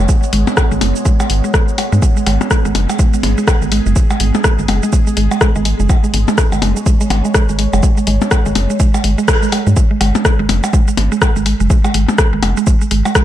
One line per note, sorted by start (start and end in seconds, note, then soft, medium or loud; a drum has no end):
0.00 9.78 G#3 medium
0.00 9.76 B3 medium
0.00 9.77 G#4 medium
0.00 2.05 C#5 medium
0.00 9.76 F#5 medium
0.09 0.13 G#3 medium
0.09 kick loud
0.09 cabasa medium
0.23 cabasa soft
0.33 0.44 G#1 loud
0.33 0.39 G#3 loud
0.33 open hi-hat loud
0.47 0.50 G#3 medium
0.47 percussion blips medium
0.47 cabasa soft
0.57 kick loud
0.57 cross-stick medium
0.57 cabasa medium
0.57 percussion blips soft
0.71 0.79 G#1 medium
0.71 0.76 G#3 loud
0.71 cabasa soft
0.81 0.93 F#1 loud
0.81 0.85 G#3 medium
0.81 open hi-hat loud
0.81 percussion blips medium
0.96 cabasa soft
1.05 1.12 G#3 loud
1.05 kick loud
1.05 cabasa medium
1.20 1.23 G#3 medium
1.20 cabasa soft
1.20 percussion blips soft
1.30 1.41 G#1 medium
1.30 open hi-hat medium
1.44 1.51 G#3 medium
1.44 cabasa soft
1.54 1.64 G#3 medium
1.54 kick loud
1.54 cross-stick medium
1.54 cabasa medium
1.68 cabasa soft
1.78 1.82 G#3 medium
1.78 open hi-hat medium
1.78 percussion blips soft
1.92 2.00 G#2 loud
1.92 1.97 G#3 loud
1.92 cabasa soft
2.02 2.06 G#3 medium
2.02 5.92 G#4 medium
2.02 kick loud
2.02 cabasa medium
2.17 2.21 G#3 medium
2.17 cabasa soft
2.26 2.38 G#1 medium
2.26 2.33 G#3 loud
2.26 open hi-hat medium
2.26 percussion blips soft
2.41 2.44 G#3 medium
2.41 percussion blips medium
2.41 cabasa soft
2.51 2.57 G#3 medium
2.51 kick loud
2.51 cross-stick medium
2.51 cabasa medium
2.65 2.73 G#1 medium
2.65 2.70 G#3 loud
2.65 cabasa soft
2.75 2.86 F#1 medium
2.75 2.79 G#3 medium
2.75 open hi-hat medium
2.75 percussion blips medium
2.89 2.94 G#3 medium
2.89 cabasa soft
2.89 percussion blips soft
2.99 3.06 G#3 loud
2.99 kick loud
2.99 cabasa medium
3.14 3.16 G#3 medium
3.14 cabasa soft
3.23 3.35 G#1 medium
3.23 3.30 G#3 medium
3.23 open hi-hat medium
3.23 percussion blips medium
3.38 3.42 G#3 loud
3.38 cabasa soft
3.47 3.51 G#3 medium
3.47 kick loud
3.47 cross-stick medium
3.47 cabasa medium
3.47 percussion blips soft
3.62 3.80 G#1 medium
3.62 3.66 G#3 medium
3.62 cabasa soft
3.72 3.78 G#3 loud
3.72 open hi-hat medium
3.86 3.94 F#1 loud
3.86 3.89 G#3 medium
3.86 cabasa soft
3.96 4.02 G#3 medium
3.96 kick loud
3.96 cabasa medium
4.10 4.15 G#3 loud
4.10 cabasa soft
4.10 percussion blips soft
4.20 4.32 G#1 loud
4.20 4.24 G#3 medium
4.20 open hi-hat medium
4.34 4.39 G#3 medium
4.34 percussion blips medium
4.34 cabasa soft
4.44 4.51 G#3 loud
4.44 kick loud
4.44 cross-stick medium
4.44 cabasa medium
4.59 4.66 G#1 loud
4.59 4.61 G#3 medium
4.59 cabasa soft
4.68 4.80 F#1 medium
4.68 4.75 G#3 medium
4.68 open hi-hat medium
4.68 percussion blips medium
4.68 percussion blips soft
4.83 4.87 G#3 loud
4.83 cabasa soft
4.93 4.97 G#3 medium
4.93 kick loud
4.93 cabasa medium
5.07 5.11 G#3 medium
5.07 cabasa soft
5.17 5.28 G#1 medium
5.17 5.23 G#3 loud
5.17 open hi-hat medium
5.31 5.34 G#3 medium
5.31 cabasa soft
5.31 percussion blips soft
5.41 5.48 G#3 medium
5.41 kick loud
5.41 cross-stick medium
5.41 cabasa medium
5.55 5.74 G#1 medium
5.55 5.60 G#3 loud
5.55 cabasa soft
5.65 5.69 G#3 medium
5.65 open hi-hat medium
5.80 5.87 F#1 loud
5.80 5.84 G#3 medium
5.80 cabasa soft
5.89 5.96 G#3 loud
5.89 9.80 C#5 medium
5.89 kick loud
5.89 cabasa medium
5.89 percussion blips soft
6.04 6.07 G#3 medium
6.04 cabasa soft
6.14 6.25 G#1 loud
6.14 6.20 G#3 medium
6.14 open hi-hat medium
6.28 6.33 G#3 loud
6.28 percussion blips medium
6.28 cabasa soft
6.38 6.42 G#3 medium
6.38 kick loud
6.38 cross-stick medium
6.38 cabasa medium
6.52 6.60 G#1 loud
6.52 6.57 G#3 medium
6.52 cabasa soft
6.52 percussion blips soft
6.62 6.73 F#1 medium
6.62 6.69 G#3 loud
6.62 open hi-hat medium
6.62 percussion blips medium
6.76 6.79 G#3 medium
6.76 cabasa soft
6.86 6.93 G#3 medium
6.86 kick loud
6.86 cabasa medium
7.01 7.05 G#3 loud
7.01 cabasa soft
7.10 7.22 G#1 medium
7.10 7.14 G#3 medium
7.10 open hi-hat medium
7.10 percussion blips medium
7.10 percussion blips soft
7.25 7.29 G#3 medium
7.25 cabasa soft
7.34 7.41 G#3 loud
7.34 kick loud
7.34 cross-stick medium
7.34 cabasa medium
7.49 7.67 G#1 medium
7.49 7.52 G#3 medium
7.49 cabasa soft
7.59 7.65 G#3 medium
7.59 open hi-hat medium
7.73 7.81 F#1 loud
7.73 7.78 G#3 loud
7.73 cabasa soft
7.73 percussion blips soft
7.83 7.87 G#3 medium
7.83 kick loud
7.83 cabasa medium
7.97 8.02 G#3 medium
7.97 cabasa soft
8.07 8.19 G#1 loud
8.07 8.14 G#3 loud
8.07 open hi-hat medium
8.21 8.24 G#3 medium
8.21 percussion blips medium
8.21 cabasa soft
8.31 8.38 G#3 medium
8.31 kick loud
8.31 cross-stick medium
8.31 cabasa medium
8.31 percussion blips soft
8.46 8.53 G#1 loud
8.46 8.50 G#3 loud
8.46 cabasa soft
8.55 8.67 F#1 loud
8.55 8.59 G#3 medium
8.55 open hi-hat medium
8.55 percussion blips medium
8.70 8.74 G#3 medium
8.70 cabasa soft
8.80 8.86 G#3 loud
8.80 kick loud
8.80 cabasa medium
8.94 8.97 G#3 medium
8.94 cabasa soft
8.94 percussion blips soft
9.04 9.15 G#1 medium
9.04 9.10 G#3 medium
9.04 open hi-hat medium
9.18 9.23 G#3 loud
9.18 cabasa soft
9.28 9.32 G#3 medium
9.28 kick loud
9.28 cross-stick medium
9.28 cabasa medium
9.43 9.47 G#3 medium
9.43 cabasa soft
9.52 9.59 G#3 loud
9.52 open hi-hat medium
9.52 percussion blips soft
9.67 9.74 G#2 loud
9.67 9.69 G#3 medium
9.67 cabasa soft
9.76 9.80 G#3 medium
9.76 kick loud
9.76 cabasa medium
9.91 9.95 G#3 medium
10.01 10.12 G#1 loud
10.01 10.07 G#3 loud
10.01 open hi-hat medium
10.01 percussion blips soft
10.15 10.18 G#3 medium
10.15 percussion blips loud
10.15 cabasa soft
10.25 10.31 G#3 medium
10.25 kick loud
10.25 cross-stick medium
10.25 cabasa medium
10.39 10.47 G#1 loud
10.39 10.44 G#3 loud
10.49 10.60 F#1 medium
10.49 10.53 G#3 medium
10.49 open hi-hat loud
10.49 percussion blips medium
10.64 10.68 G#3 medium
10.64 cabasa soft
10.64 percussion blips soft
10.73 10.80 G#3 loud
10.73 kick loud
10.73 cabasa medium
10.88 10.90 G#3 medium
10.88 cabasa soft
10.97 11.09 G#1 medium
10.97 11.04 G#3 medium
10.97 open hi-hat medium
10.97 percussion blips medium
11.12 11.16 G#3 loud
11.12 cabasa soft
11.22 11.26 G#3 medium
11.22 kick loud
11.22 cross-stick medium
11.22 cabasa medium
11.22 percussion blips soft
11.36 11.54 G#1 medium
11.36 11.40 G#3 medium
11.36 cabasa soft
11.46 11.52 G#3 loud
11.46 open hi-hat medium
11.60 11.68 F#1 loud
11.60 11.63 G#3 medium
11.60 cabasa soft
11.70 11.77 G#3 medium
11.70 kick loud
11.70 cabasa medium
11.84 11.89 G#3 loud
11.84 cabasa soft
11.84 percussion blips soft
11.94 12.06 G#1 medium
11.94 11.98 G#3 medium
11.94 open hi-hat loud
12.09 12.13 G#3 medium
12.09 percussion blips loud
12.09 cabasa soft
12.18 12.25 G#3 loud
12.18 kick loud
12.18 cross-stick loud
12.18 cabasa medium
12.33 12.41 G#1 medium
12.33 12.36 G#3 medium
12.43 12.54 F#1 loud
12.43 12.49 G#3 medium
12.43 open hi-hat loud
12.43 percussion blips medium
12.43 percussion blips soft
12.57 12.62 G#3 loud
12.57 cabasa soft
12.67 12.71 G#3 medium
12.67 kick loud
12.67 cabasa medium
12.81 12.86 G#3 medium
12.81 cabasa soft
12.91 13.02 G#1 medium
12.91 12.97 G#3 loud
12.91 open hi-hat medium
13.05 13.08 G#3 medium
13.05 cabasa soft
13.05 percussion blips soft
13.15 13.22 G#3 medium
13.15 kick loud
13.15 cross-stick loud
13.15 cabasa medium